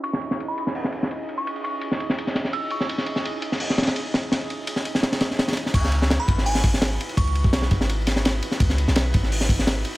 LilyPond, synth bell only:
\new Staff \with { instrumentName = "Synth bell" } { \time 4/4 \key cis \minor \tempo 4 = 168 cis'''8 r8. b''8 r2 cis'''16~ | cis'''16 r16 cis'''8. r4. r16 e'''8 cis'''8~ | cis'''4 r2. | r1 |
cis'''8 r8. b''8 r16 gis''8 r4. | cis'''4 r2. | r1 | }